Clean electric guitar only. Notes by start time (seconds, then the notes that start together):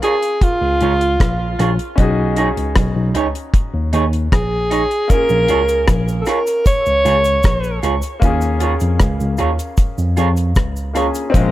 0.03 F4 G#4 C#5
0.81 F4 G#4 C#5
1.59 F4 G#4 C#5
2.37 D#4 G#4 C#5
3.15 D#4 G#4 C#5
3.93 D#4 G#4 C#5
4.71 D#4 G#4 C#5
5.49 F4 G#4 C#5
6.27 F4 G#4 C#5
7.05 F4 G#4 C#5
7.83 F4 G#4 C#5
8.61 F4 G#4 C#5
9.38 F4 G#4 C#5
10.17 F4 G#4 C#5
10.95 F4 G#4 C#5